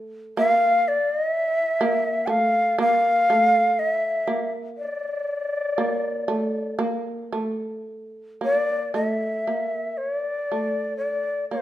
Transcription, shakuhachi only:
0, 0, Header, 1, 2, 480
1, 0, Start_track
1, 0, Tempo, 967742
1, 435, Time_signature, 4, 2, 24, 8
1, 1398, Tempo, 986842
1, 2838, Tempo, 1018676
1, 3318, Tempo, 1079137
1, 4278, Tempo, 1018676
1, 5532, End_track
2, 0, Start_track
2, 0, Title_t, "Shakuhachi"
2, 0, Program_c, 0, 77
2, 187, Note_on_c, 0, 77, 109
2, 436, Note_on_c, 0, 74, 102
2, 443, Note_off_c, 0, 77, 0
2, 560, Note_off_c, 0, 74, 0
2, 560, Note_on_c, 0, 75, 102
2, 639, Note_off_c, 0, 75, 0
2, 639, Note_on_c, 0, 76, 102
2, 1123, Note_on_c, 0, 81, 78
2, 1130, Note_off_c, 0, 76, 0
2, 1139, Note_on_c, 0, 77, 93
2, 1147, Note_off_c, 0, 81, 0
2, 1388, Note_off_c, 0, 77, 0
2, 1391, Note_on_c, 0, 77, 103
2, 1871, Note_on_c, 0, 76, 89
2, 1878, Note_off_c, 0, 77, 0
2, 2227, Note_off_c, 0, 76, 0
2, 2350, Note_on_c, 0, 74, 78
2, 3295, Note_off_c, 0, 74, 0
2, 4050, Note_on_c, 0, 74, 89
2, 4265, Note_off_c, 0, 74, 0
2, 4271, Note_on_c, 0, 76, 69
2, 4757, Note_on_c, 0, 73, 69
2, 4764, Note_off_c, 0, 76, 0
2, 4837, Note_off_c, 0, 73, 0
2, 4837, Note_on_c, 0, 74, 69
2, 5225, Note_off_c, 0, 74, 0
2, 5228, Note_on_c, 0, 74, 68
2, 5454, Note_off_c, 0, 74, 0
2, 5481, Note_on_c, 0, 70, 70
2, 5532, Note_off_c, 0, 70, 0
2, 5532, End_track
0, 0, End_of_file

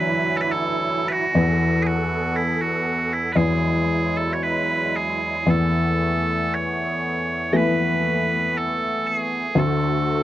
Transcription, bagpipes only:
0, 0, Header, 1, 2, 480
1, 0, Start_track
1, 0, Tempo, 991736
1, 651, Time_signature, 4, 2, 24, 8
1, 1619, Tempo, 1052632
1, 3059, Tempo, 1013514
1, 4824, End_track
2, 0, Start_track
2, 0, Title_t, "Bagpipes"
2, 0, Program_c, 0, 109
2, 0, Note_on_c, 0, 71, 74
2, 178, Note_off_c, 0, 71, 0
2, 178, Note_on_c, 0, 69, 81
2, 199, Note_off_c, 0, 69, 0
2, 199, Note_on_c, 0, 71, 72
2, 249, Note_off_c, 0, 71, 0
2, 249, Note_on_c, 0, 69, 82
2, 525, Note_off_c, 0, 69, 0
2, 525, Note_on_c, 0, 71, 73
2, 542, Note_off_c, 0, 71, 0
2, 542, Note_on_c, 0, 66, 73
2, 882, Note_off_c, 0, 66, 0
2, 882, Note_on_c, 0, 68, 60
2, 903, Note_off_c, 0, 68, 0
2, 903, Note_on_c, 0, 66, 60
2, 1144, Note_off_c, 0, 66, 0
2, 1144, Note_on_c, 0, 64, 64
2, 1265, Note_off_c, 0, 64, 0
2, 1265, Note_on_c, 0, 66, 58
2, 1516, Note_off_c, 0, 66, 0
2, 1516, Note_on_c, 0, 64, 53
2, 1609, Note_off_c, 0, 64, 0
2, 1609, Note_on_c, 0, 71, 61
2, 1628, Note_off_c, 0, 71, 0
2, 1628, Note_on_c, 0, 68, 61
2, 1994, Note_off_c, 0, 68, 0
2, 1994, Note_on_c, 0, 69, 55
2, 2069, Note_off_c, 0, 69, 0
2, 2069, Note_on_c, 0, 73, 44
2, 2113, Note_off_c, 0, 73, 0
2, 2113, Note_on_c, 0, 71, 69
2, 2355, Note_off_c, 0, 71, 0
2, 2355, Note_on_c, 0, 68, 56
2, 2602, Note_off_c, 0, 68, 0
2, 2602, Note_on_c, 0, 69, 65
2, 3077, Note_off_c, 0, 69, 0
2, 3077, Note_on_c, 0, 73, 70
2, 3545, Note_off_c, 0, 73, 0
2, 3545, Note_on_c, 0, 75, 64
2, 3560, Note_off_c, 0, 75, 0
2, 3560, Note_on_c, 0, 71, 64
2, 4040, Note_off_c, 0, 71, 0
2, 4040, Note_on_c, 0, 69, 68
2, 4273, Note_off_c, 0, 69, 0
2, 4273, Note_on_c, 0, 68, 63
2, 4521, Note_off_c, 0, 68, 0
2, 4521, Note_on_c, 0, 69, 66
2, 4824, Note_off_c, 0, 69, 0
2, 4824, End_track
0, 0, End_of_file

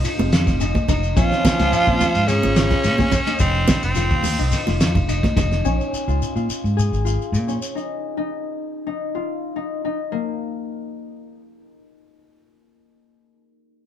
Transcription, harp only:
0, 0, Header, 1, 2, 480
1, 0, Start_track
1, 0, Key_signature, -5, "minor"
1, 0, Tempo, 559701
1, 999, Time_signature, 4, 2, 24, 8
1, 11887, End_track
2, 0, Start_track
2, 0, Title_t, "Harp"
2, 0, Program_c, 0, 46
2, 0, Note_on_c, 0, 61, 62
2, 0, Note_on_c, 0, 63, 74
2, 0, Note_on_c, 0, 65, 91
2, 156, Note_off_c, 0, 65, 0
2, 159, Note_on_c, 0, 65, 72
2, 514, Note_off_c, 0, 63, 0
2, 517, Note_on_c, 0, 63, 74
2, 754, Note_off_c, 0, 63, 0
2, 758, Note_on_c, 0, 63, 78
2, 992, Note_off_c, 0, 61, 0
2, 995, Note_on_c, 0, 61, 91
2, 1357, Note_off_c, 0, 65, 0
2, 1361, Note_on_c, 0, 65, 75
2, 1597, Note_off_c, 0, 65, 0
2, 1601, Note_on_c, 0, 65, 62
2, 1952, Note_on_c, 0, 68, 89
2, 2193, Note_off_c, 0, 65, 0
2, 2197, Note_on_c, 0, 65, 75
2, 2556, Note_off_c, 0, 61, 0
2, 2559, Note_on_c, 0, 61, 74
2, 2792, Note_off_c, 0, 63, 0
2, 2796, Note_on_c, 0, 63, 83
2, 3390, Note_off_c, 0, 65, 0
2, 3393, Note_on_c, 0, 65, 87
2, 3753, Note_off_c, 0, 63, 0
2, 3756, Note_on_c, 0, 63, 75
2, 3902, Note_off_c, 0, 68, 0
2, 3997, Note_off_c, 0, 65, 0
2, 4000, Note_on_c, 0, 65, 81
2, 4355, Note_off_c, 0, 63, 0
2, 4358, Note_on_c, 0, 63, 79
2, 4597, Note_off_c, 0, 63, 0
2, 4600, Note_on_c, 0, 63, 80
2, 4839, Note_off_c, 0, 61, 0
2, 4843, Note_on_c, 0, 61, 100
2, 5209, Note_off_c, 0, 65, 0
2, 5213, Note_on_c, 0, 65, 77
2, 5446, Note_off_c, 0, 65, 0
2, 5450, Note_on_c, 0, 65, 65
2, 5804, Note_on_c, 0, 68, 84
2, 6041, Note_off_c, 0, 65, 0
2, 6044, Note_on_c, 0, 65, 77
2, 6408, Note_off_c, 0, 61, 0
2, 6411, Note_on_c, 0, 61, 73
2, 6645, Note_off_c, 0, 63, 0
2, 6648, Note_on_c, 0, 63, 75
2, 7005, Note_off_c, 0, 63, 0
2, 7009, Note_on_c, 0, 63, 83
2, 7600, Note_off_c, 0, 63, 0
2, 7604, Note_on_c, 0, 63, 69
2, 7754, Note_off_c, 0, 68, 0
2, 7842, Note_off_c, 0, 65, 0
2, 7845, Note_on_c, 0, 65, 68
2, 8195, Note_off_c, 0, 63, 0
2, 8198, Note_on_c, 0, 63, 75
2, 8441, Note_off_c, 0, 63, 0
2, 8444, Note_on_c, 0, 63, 79
2, 8679, Note_on_c, 0, 58, 83
2, 8896, Note_off_c, 0, 61, 0
2, 10009, Note_off_c, 0, 65, 0
2, 10763, Note_off_c, 0, 63, 0
2, 11436, Note_off_c, 0, 58, 0
2, 11887, End_track
0, 0, End_of_file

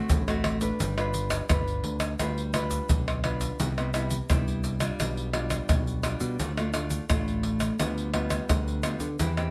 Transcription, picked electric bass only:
0, 0, Header, 1, 2, 480
1, 0, Start_track
1, 0, Tempo, 699301
1, 550, Time_signature, 4, 2, 24, 8
1, 6524, End_track
2, 0, Start_track
2, 0, Title_t, "Picked electric bass"
2, 0, Program_c, 0, 34
2, 69, Note_on_c, 0, 33, 95
2, 478, Note_off_c, 0, 33, 0
2, 548, Note_on_c, 0, 31, 99
2, 957, Note_off_c, 0, 31, 0
2, 1028, Note_on_c, 0, 31, 85
2, 1233, Note_off_c, 0, 31, 0
2, 1266, Note_on_c, 0, 38, 89
2, 1472, Note_off_c, 0, 38, 0
2, 1511, Note_on_c, 0, 38, 91
2, 1919, Note_off_c, 0, 38, 0
2, 1990, Note_on_c, 0, 35, 91
2, 2398, Note_off_c, 0, 35, 0
2, 2471, Note_on_c, 0, 36, 90
2, 2879, Note_off_c, 0, 36, 0
2, 2952, Note_on_c, 0, 36, 88
2, 3359, Note_off_c, 0, 36, 0
2, 3429, Note_on_c, 0, 35, 101
2, 3838, Note_off_c, 0, 35, 0
2, 3912, Note_on_c, 0, 35, 100
2, 4217, Note_off_c, 0, 35, 0
2, 4261, Note_on_c, 0, 47, 99
2, 4367, Note_off_c, 0, 47, 0
2, 4389, Note_on_c, 0, 38, 88
2, 4797, Note_off_c, 0, 38, 0
2, 4872, Note_on_c, 0, 33, 91
2, 5279, Note_off_c, 0, 33, 0
2, 5352, Note_on_c, 0, 38, 101
2, 5758, Note_off_c, 0, 38, 0
2, 5830, Note_on_c, 0, 38, 100
2, 6135, Note_off_c, 0, 38, 0
2, 6178, Note_on_c, 0, 50, 96
2, 6284, Note_off_c, 0, 50, 0
2, 6311, Note_on_c, 0, 40, 91
2, 6524, Note_off_c, 0, 40, 0
2, 6524, End_track
0, 0, End_of_file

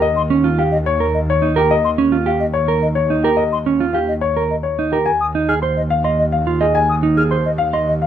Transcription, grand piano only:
0, 0, Header, 1, 2, 480
1, 0, Start_track
1, 0, Tempo, 560748
1, 15, Time_signature, 3, 2, 24, 8
1, 6907, End_track
2, 0, Start_track
2, 0, Title_t, "Grand piano"
2, 0, Program_c, 0, 0
2, 16, Note_on_c, 0, 75, 69
2, 172, Note_off_c, 0, 75, 0
2, 503, Note_on_c, 0, 77, 55
2, 654, Note_off_c, 0, 77, 0
2, 739, Note_on_c, 0, 73, 75
2, 893, Note_off_c, 0, 73, 0
2, 1111, Note_on_c, 0, 73, 68
2, 1257, Note_off_c, 0, 73, 0
2, 1348, Note_on_c, 0, 67, 55
2, 1463, Note_on_c, 0, 75, 77
2, 1496, Note_off_c, 0, 67, 0
2, 1614, Note_off_c, 0, 75, 0
2, 1943, Note_on_c, 0, 77, 56
2, 2094, Note_off_c, 0, 77, 0
2, 2170, Note_on_c, 0, 73, 69
2, 2330, Note_off_c, 0, 73, 0
2, 2528, Note_on_c, 0, 73, 60
2, 2689, Note_off_c, 0, 73, 0
2, 2768, Note_on_c, 0, 67, 50
2, 2882, Note_on_c, 0, 75, 68
2, 2929, Note_off_c, 0, 67, 0
2, 3047, Note_off_c, 0, 75, 0
2, 3365, Note_on_c, 0, 77, 51
2, 3528, Note_off_c, 0, 77, 0
2, 3607, Note_on_c, 0, 73, 67
2, 3769, Note_off_c, 0, 73, 0
2, 3965, Note_on_c, 0, 73, 57
2, 4128, Note_off_c, 0, 73, 0
2, 4210, Note_on_c, 0, 67, 48
2, 4328, Note_on_c, 0, 80, 67
2, 4370, Note_off_c, 0, 67, 0
2, 4489, Note_off_c, 0, 80, 0
2, 4810, Note_on_c, 0, 84, 51
2, 4970, Note_off_c, 0, 84, 0
2, 5053, Note_on_c, 0, 77, 70
2, 5172, Note_on_c, 0, 84, 53
2, 5211, Note_off_c, 0, 77, 0
2, 5330, Note_off_c, 0, 84, 0
2, 5413, Note_on_c, 0, 77, 61
2, 5571, Note_off_c, 0, 77, 0
2, 5656, Note_on_c, 0, 68, 47
2, 5776, Note_on_c, 0, 80, 67
2, 5812, Note_off_c, 0, 68, 0
2, 5932, Note_off_c, 0, 80, 0
2, 6255, Note_on_c, 0, 84, 47
2, 6411, Note_off_c, 0, 84, 0
2, 6491, Note_on_c, 0, 77, 70
2, 6620, Note_on_c, 0, 84, 54
2, 6650, Note_off_c, 0, 77, 0
2, 6773, Note_off_c, 0, 84, 0
2, 6863, Note_on_c, 0, 77, 62
2, 6907, Note_off_c, 0, 77, 0
2, 6907, End_track
0, 0, End_of_file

